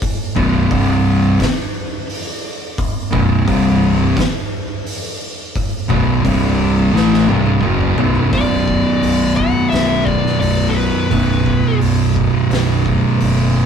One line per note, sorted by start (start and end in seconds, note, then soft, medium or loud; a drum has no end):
0.02 kick loud
0.02 open hi-hat medium
0.35 0.68 B0 loud
0.35 0.69 B1 medium
0.35 0.70 F#2 loud
0.35 0.70 B2 loud
0.35 kick loud
0.70 1.36 C1 loud
0.70 1.38 C2 medium
0.70 1.39 G2 loud
0.70 1.39 C3 loud
0.70 kick loud
0.70 open hi-hat medium
1.40 kick loud
1.40 snare loud
1.40 open hi-hat medium
2.10 open hi-hat medium
2.78 kick loud
2.78 open hi-hat medium
3.11 3.45 B0 loud
3.11 3.45 B1 medium
3.11 3.46 F#2 loud
3.11 3.46 B2 loud
3.11 kick loud
3.46 4.13 C1 loud
3.46 4.15 C2 loud
3.46 4.15 G2 loud
3.46 4.16 C3 loud
3.46 kick loud
3.46 open hi-hat medium
4.17 kick loud
4.17 snare loud
4.17 open hi-hat medium
4.87 open hi-hat medium
5.56 kick loud
5.56 open hi-hat medium
5.89 6.22 B0 loud
5.89 6.23 B1 medium
5.89 6.23 F#2 medium
5.89 6.24 B2 loud
5.89 kick loud
6.23 6.90 C1 loud
6.23 6.92 C2 medium
6.23 6.92 G2 medium
6.23 6.93 C3 loud
6.23 kick loud
6.23 open hi-hat medium
6.93 7.26 A1 loud
6.93 7.27 A2 loud
6.93 7.27 E3 loud
6.93 7.28 A3 loud
6.93 snare medium
7.14 snare medium
7.28 7.61 C1 loud
7.28 7.62 C2 loud
7.28 7.62 G2 loud
7.28 7.63 C3 loud
7.28 high tom medium
7.46 high tom medium
7.63 7.96 F#1 loud
7.63 7.97 F#2 medium
7.63 7.97 C#3 medium
7.63 7.97 F#3 loud
7.63 mid tom medium
7.81 mid tom medium
7.98 8.30 B0 medium
7.98 8.30 B1 loud
7.98 8.32 F#2 medium
7.98 8.32 B2 loud
7.98 floor tom loud
8.15 floor tom loud
8.31 8.81 B0 medium
8.31 11.08 B1 loud
8.31 11.09 F#2 loud
8.31 9.36 D5 medium
8.31 kick loud
8.31 open hi-hat medium
8.35 11.10 B2 loud
8.68 kick medium
9.02 9.50 B0 medium
9.02 open hi-hat medium
9.36 9.69 F#5 loud
9.36 kick medium
9.70 10.20 B0 medium
9.70 10.07 E5 loud
9.70 open hi-hat medium
9.74 snare loud
10.05 10.39 D5 loud
10.05 kick medium
10.26 snare soft
10.40 10.90 B0 medium
10.40 10.69 D5 medium
10.40 open hi-hat medium
10.69 10.76 A4 medium
10.75 11.76 B4 medium
11.10 11.60 B0 medium
11.10 13.66 B1 medium
11.10 13.66 F#2 loud
11.10 kick loud
11.10 open hi-hat medium
11.14 13.66 B2 loud
11.46 kick medium
11.81 12.30 B0 medium
11.81 open hi-hat medium
12.16 kick medium
12.50 12.99 B0 medium
12.50 snare loud
12.50 open hi-hat medium
12.86 kick medium
13.20 13.66 F#1 medium
13.20 open hi-hat medium